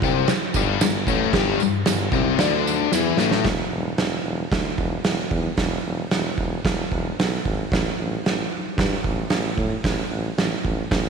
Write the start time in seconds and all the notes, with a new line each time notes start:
0.02 C2 C3 C4, kick, tambourine
0.28 G1, muted overdriven electric guitar stroke, snare, tambourine, crash
0.54 G1 G2 G3, kick, tambourine
0.81 G1 G2, snare, tambourine, crash
1.07 A1 A2 A3, kick, tambourine
1.33 G1 G2 G3, kick, snare, crash
1.60 G2, tambourine
1.84 G1 G2, snare, tambourine, crash
2.12 C2 C3 C4, kick, tambourine
2.37 D2 D3 D4, snare, tambourine, crash
2.67 tambourine
2.92 E2 E3 E4, snare, tambourine
3.17 A1 A2 A3, snare, tambourine
3.31 snare
3.44 E1, kick, snare, open hi-hat
3.71 E1
3.98 E1, snare, open hi-hat
4.24 E1
4.52 D2, kick, snare, open hi-hat
4.78 E1, kick
5.04 E1, snare, open hi-hat
5.30 E2, kick
5.57 E1, kick, snare, open hi-hat
5.85 E1
6.11 E1, snare, open hi-hat
6.38 E1, kick
6.65 E1, kick, snare, open hi-hat
6.91 E1, kick
7.19 B1, snare, open hi-hat
7.45 G#1, kick
7.72 A1, kick, snare, open hi-hat
8.00 A1
8.25 A1, snare, open hi-hat
8.77 G2, kick, snare, open hi-hat
9.04 A1, kick
9.30 A1, snare, open hi-hat
9.57 A2, kick
9.84 A1, kick, snare, open hi-hat
10.10 A1
10.37 A1, snare, open hi-hat
10.64 A1, kick
10.91 A1, kick, snare, open hi-hat